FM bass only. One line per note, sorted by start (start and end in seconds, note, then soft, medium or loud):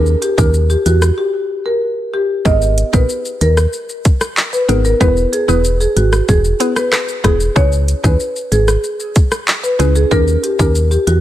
0.00 0.16 D#2 loud
0.38 0.76 D#2 loud
0.86 1.11 E2 medium
2.45 2.84 G#1 loud
2.93 3.06 A#1 medium
3.41 3.67 D#2 medium
4.69 4.94 G#1 loud
5.01 5.26 E1 loud
5.49 5.87 E1 medium
5.96 6.22 G#1 medium
6.29 6.54 E1 loud
7.24 7.50 E1 medium
7.56 7.94 C#2 loud
8.04 8.17 D#2 loud
8.52 8.77 G#1 loud
9.79 10.05 C#2 medium
10.11 10.37 D#2 loud
10.59 10.98 D#2 loud
11.07 11.21 E2 medium